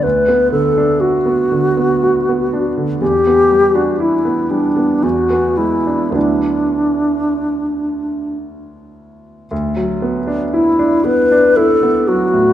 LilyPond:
<<
  \new Staff \with { instrumentName = "Alto flute" } { \time 3/4 \key d \major \tempo 4 = 59 b'8 a'8 fis'2 | g'8. fis'16 e'8 d'8 fis'8 e'8 | d'2 r4 | r4 e'8 b'8 a'8 fis'8 | }
  \new Staff \with { instrumentName = "Grand piano" } { \time 3/4 \key d \major d,16 b16 d16 d'16 fis'16 b16 d16 b16 fis'16 b16 d'16 d16 | e,16 b16 g16 d'16 e'16 b16 g16 b16 e,16 b16 gis16 d'16 | <d, fis b d' e'>2. | d,16 fis16 b16 d'16 e'16 d'16 b16 d'16 e'16 b16 fis16 a,16 | }
>>